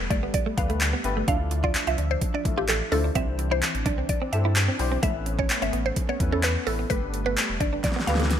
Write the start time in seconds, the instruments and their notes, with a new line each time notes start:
Already playing: analog synth pad G3 A3 B3
0.10 sub bass G1, clean electric guitar A3, synth pluck D5, kick, closed hi-hat
0.23 clean electric guitar B3
0.34 synth pluck D5, kick, closed hi-hat
0.46 clean electric guitar A3
0.57 sub bass D2, grand piano A3 B3 D4 G4 B4, synth pluck F5, muted clean electric guitar stroke, kick, closed hi-hat
0.70 clean electric guitar A3, closed hi-hat
0.81 clap, closed hi-hat
0.93 clean electric guitar B3
1.04 sub bass G1, grand piano A3 B3 D4 G4 B4, muted clean electric guitar stroke, closed hi-hat
1.17 clean electric guitar A3
1.28 sub bass D2, analog synth pad F3 D4 E5, grand piano A3 D4 E4 F4 A4, clean electric guitar D4, synth pluck F5, kick, closed hi-hat
1.51 muted clean electric guitar stroke, closed hi-hat
1.64 clean electric guitar F4, synth pluck D5, kick
1.74 muted clean electric guitar stroke, clap, closed hi-hat
1.87 sub bass C2, clean electric guitar F4, synth pluck E5, closed hi-hat
1.98 sub bass D2, clean electric guitar D4, closed hi-hat
2.11 synth pluck C5
2.21 kick, closed hi-hat
2.34 clean electric guitar D4, synth pluck D5
2.45 sub bass A1, grand piano A3 D4 E4 F4 A4, muted clean electric guitar stroke, kick, closed hi-hat
2.58 clean electric guitar F4, synth pluck G4
2.68 synth pluck A4, muted clean electric guitar stroke, clap, closed hi-hat
2.92 sub bass D2, grand piano A3 D4 E4 F4 C5, clean electric guitar D4, synth pluck A4, open hi-hat
3.04 clean electric guitar D4
3.15 sub bass C2, analog synth pad E3 C4 D4, grand piano C4 D4 E4 G4 C5, clean electric guitar C4, synth pluck E5, kick, closed hi-hat
3.39 muted clean electric guitar stroke, closed hi-hat
3.51 clean electric guitar E4, synth pluck C5
3.62 muted clean electric guitar stroke, clap, closed hi-hat
3.75 sub bass A1, closed hi-hat
3.86 sub bass C2, clean electric guitar D4, synth pluck D5, kick, closed hi-hat
3.98 clean electric guitar C4
4.09 synth pluck D5, kick, closed hi-hat
4.22 clean electric guitar C4
4.32 sub bass G2, grand piano C4 D4 E4 G4 A4, synth pluck E5, muted clean electric guitar stroke, closed hi-hat
4.45 clean electric guitar E4
4.56 clap, closed hi-hat
4.68 clean electric guitar C4
4.79 sub bass B1, grand piano C4 D4 E4 G4 C5, muted clean electric guitar stroke, open hi-hat
4.92 clean electric guitar C4
5.02 sub bass A1, clean electric guitar A3, analog synth pad A3 B3 C#4, grand piano B3 C#4 E4 A4 B4, synth pluck E5, kick, closed hi-hat
5.26 muted clean electric guitar stroke, closed hi-hat
5.39 clean electric guitar C#4, synth pluck C#5, kick
5.50 muted clean electric guitar stroke, clap, closed hi-hat
5.62 sub bass G1, clean electric guitar C#4, synth pluck E5, closed hi-hat
5.73 sub bass A1, clean electric guitar B3, closed hi-hat
5.86 synth pluck C5
5.96 kick, closed hi-hat
6.09 clean electric guitar B3, synth pluck C#5
6.20 sub bass E2, grand piano B3 C#4 E4 A4 B4, muted clean electric guitar stroke, kick, closed hi-hat
6.32 clean electric guitar C#4, synth pluck A4
6.43 synth pluck B4, muted clean electric guitar stroke, clap, closed hi-hat
6.67 sub bass A1, grand piano B3 C#4 E4 A4 B4, clean electric guitar B3, synth pluck A4, open hi-hat
6.79 clean electric guitar B3
6.90 sub bass G1, analog synth pad G3 A3, clean electric guitar A3, grand piano B3 D4 G4 A4 B4, synth pluck B4, kick, closed hi-hat
7.14 muted clean electric guitar stroke, closed hi-hat
7.26 clean electric guitar B3, synth pluck B4
7.37 muted clean electric guitar stroke, clap, closed hi-hat
7.50 sub bass E1
7.60 sub bass G1, clean electric guitar D4, synth pluck D5, kick, closed hi-hat
7.73 clean electric guitar D4
7.84 synth pluck D5, kick, snare, closed hi-hat
7.92 snare
7.96 clean electric guitar B3, snare
8.07 sub bass D2, grand piano B3 D4 G4 A4 B4, synth pluck F5, muted clean electric guitar stroke, snare, closed hi-hat
8.15 snare
8.20 clean electric guitar A3, snare, closed hi-hat
8.30 snare, closed hi-hat